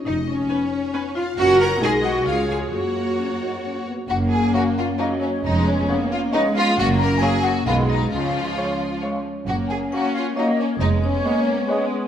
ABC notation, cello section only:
X:1
M:3/4
L:1/8
Q:1/4=135
K:F#
V:1 name="Cello section"
D C4 E | F A G F E G | F4- F z | F,,2 z4 |
E,,2 z4 | F,,2 z2 B,,2 | C,2 z4 | F,,2 z4 |
E,,2 z4 |]